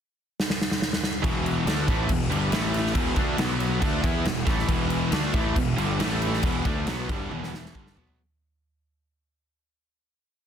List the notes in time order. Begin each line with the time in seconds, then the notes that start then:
0.40 snare
0.50 snare
0.61 snare
0.71 snare
0.82 snare
0.93 snare
1.03 snare
1.23 E1 E2 B2 E3 B3 F#4, kick, crash
1.46 crash
1.66 D2 D3 A3 D4, snare, crash
1.87 A1 A2 E3 A3, kick, crash
2.09 E1 E2 B2, kick, crash
2.30 G1 G2 D3 G3, crash
2.50 A1 A2 E3 A3 E4 B4, snare, crash
2.74 snare, crash
2.86 snare
2.94 E1 E2 B2 E3 F#5, kick, crash
3.16 D2 D3 A3 D4, kick, crash
3.38 B1 B2 F#3 B3 F#4 C#5, snare, crash
3.60 crash
3.81 D2 D3 A3 D4 E4 B4 F#5, kick, crash
4.03 E2 E3 B3 E4, kick, crash
4.25 E1 E2 B2, snare, crash
4.47 A1 A2 E3 A3, kick, snare, crash
4.59 snare
4.68 E1 E2 B2 E3, kick, crash
4.90 crash
5.12 D2 D3 A3 D4, snare, crash
5.34 A1 A2 E3 A3, kick, crash
5.56 E1 E2 B2, kick, crash
5.78 G1 G2 D3 G3, crash
6.00 A1 A2 E3 A3 B4, snare, crash
6.22 crash
6.33 snare
6.43 E1 E2 B2 E3 B3 F#4, kick, crash
6.65 D2 D3 A3 D4, kick, crash
6.87 B1 B2 F#3 B3, snare, crash
7.09 G1 G2 D3 G3, kick, crash
7.32 E1 E2 B2 E3, high tom
7.43 snare
7.54 snare
7.66 snare
7.75 G1 G2 D3 G3, kick
7.87 snare
7.96 B1 B2 F#3 B3, floor tom
8.07 floor tom